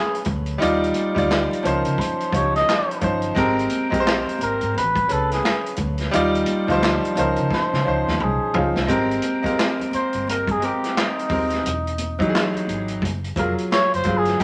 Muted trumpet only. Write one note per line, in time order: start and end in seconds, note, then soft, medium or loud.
0.00 0.28 G#4 medium
1.65 2.01 A#4 medium
1.99 2.37 C5 medium
2.35 2.55 C#5 medium
2.56 3.00 D#5 loud
4.43 4.79 A#4 loud
4.78 5.14 B4 loud
5.12 5.32 A4 medium
5.33 5.76 G#4 medium
7.19 7.50 A#4 medium
7.53 8.24 C5 loud
8.22 8.77 G#4 medium
9.95 10.26 C5 medium
10.30 10.53 A#4 medium
10.51 10.66 G#4 medium
10.65 11.00 G4 medium
10.99 12.70 D#4 medium
13.39 13.54 A#4 medium
13.72 13.93 C#5 loud
13.95 14.19 C5 loud
14.18 14.43 G#4 medium